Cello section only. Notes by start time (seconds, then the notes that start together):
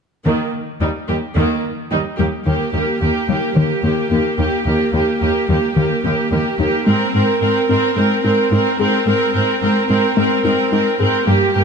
0.26 D#2
0.81 D#2
1.08 D#2
1.36 D#2
1.91 D#2
2.18 D#2
2.46 D#2
2.74 D#2
3.01 D#2
3.29 D#2
3.56 D#2
3.84 D#2
4.11 D#2
4.39 D#2
4.66 D#2
4.94 D#2
5.21 D#2
5.49 D#2
5.76 D#2
6.04 D#2
6.32 D#2
6.60 D#2
6.87 G#2
7.14 G#2
7.42 G#2
7.69 G#2
7.96 G#2
8.24 G#2
8.52 G#2
8.79 G#2
9.07 G#2
9.35 G#2
9.62 G#2
9.90 G#2
10.17 G#2
10.44 G#2
10.72 G#2
11.00 G#2
11.28 G2
11.55 G2